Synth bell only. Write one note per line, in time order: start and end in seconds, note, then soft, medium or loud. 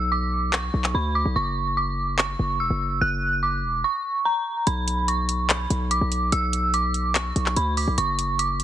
0.12 0.51 D6 loud
0.53 0.92 C#6 medium
0.95 1.11 B5 medium
1.15 1.32 D6 medium
1.36 1.75 C#6 loud
1.77 2.16 D6 medium
2.19 2.57 C#6 medium
2.60 2.99 E6 medium
3.01 3.40 F#6 loud
3.43 3.82 D6 medium
3.84 4.23 C#6 medium
4.25 4.64 A#5 medium
4.67 5.06 B5 loud
5.08 5.47 C#6 medium
5.50 5.88 B5 medium
5.91 6.30 D6 medium
6.32 6.71 E6 loud
6.74 7.13 D6 loud
7.15 7.54 C#6 medium
7.57 7.73 B5 medium
7.77 7.94 D6 medium
7.98 8.37 C#6 loud
8.39 8.64 D6 medium